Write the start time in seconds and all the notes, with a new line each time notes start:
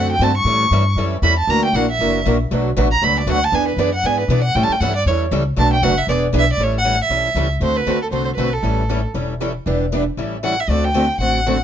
Already playing: F#2 D3 A3 C4 F#4 A4 F#5
0.12 G5
0.19 G2 D3 A3 C4 F#4 A4 A5
0.37 C#6
0.45 A2 E3 G3 C#4 E4 A4
0.71 G2 E3 G3 C#4 E4 A4
0.96 F#2 E3 G3 C#4 E4 A4
1.22 E2 E3 G3 C#4 E4 A4 B5
1.39 A5
1.47 D2 E3 F#3 A#3 D4 E4 F#4 A#4 A#5
1.65 G5
1.73 A#1 E3 F#3 A#3 D4 E4 F#4 A#4 F#5
1.91 E5
1.99 F#1 E3 F#3 A#3 D4 E4 F#4 A#4
2.25 A#1 E3 F#3 A#3 D4 E4 F#4 A#4
2.51 B1 B2 F#3 A3 D4 F#4 B4
2.77 A1 B2 F#3 A3 D4 F#4 B4
2.92 A#5
3.02 C#2 B2 F#3 A3 D4 F#4 B4 B5
3.20 D5
3.27 D2 B2 F#3 A3 D4 F#4 B4 F#5
3.44 A5
3.52 E2 E3 B3 D4 G#4 B4 G#5
3.68 B4
3.77 F#2 E3 B3 D4 G#4 B4 D5
3.95 F#5
4.03 G#2 E3 B3 D4 G#4 B4 G#5
4.20 B4
4.28 B2 E3 B3 D4 G#4 B4 D5
4.44 F#5
4.55 A2 E3 G3 C#4 E4 A4 G5
4.63 A5
4.69 G5, muted upright bass stroke
4.80 G2 E3 G3 C#4 E4 A4 F#5
4.96 D5
5.06 E2 E3 G3 C#4 E4 C#5
5.10 A4
5.31 C#2 E3 G3 C#4 E4 A4
5.57 B1 B2 F#3 A3 D4 F#4 B4 A5
5.73 G5
5.82 F#1 B2 F#3 A3 D4 F#4 B4 F#5
5.98 E5
6.07 E1 E3 B3 D4 G#4 B4 D5
6.33 B1 E3 B3 D4 G#4 B4
6.39 E5
6.53 D5
6.57 A1 E3 G3 C#4 E4 A4
6.63 C#5
6.78 F#5
6.85 E3 G3 C#4 E4 A4
7.03 E5
7.09 B1 E3 G3 C#4 E4 A4
7.35 C#2 E3 G3 C#4 E4 A4
7.60 D2 D3 A3 C4 F#4 A4 C5
7.76 B4
7.86 D2 D3 A3 C4 F#4 A4
8.02 A4
8.11 C2 D3 A3 C4 F#4 A4 C5
8.25 C5
8.35 B1 D3 A3 C4 F#4 A4 B4
8.53 A4
8.62 A1 E3 G3 C#4 E4 A4
8.89 E3 G3 C#4 E4 A4
9.14 E1 E3 G3 C#4 E4 A4
9.40 E3 G3 C#4 E4 A4
9.66 E1 E3 G3 B3 D4 E4 G4 B4
9.93 E3 G3 B3 D4 E4 G4 B4
10.17 A1 E3 G3 C#4 E4 A4
10.44 E3 G3 C#4 E4 A4 F#5
10.60 E5
10.68 D2 D3 D5
10.72 A3 C4 F#4 A4
10.85 G5
10.96 D3 A3 C4 F#4 A4
11.18 A1 D3 A3 C4 F#4 F#5
11.23 A4
11.46 D3 A3 C4 F#4 A4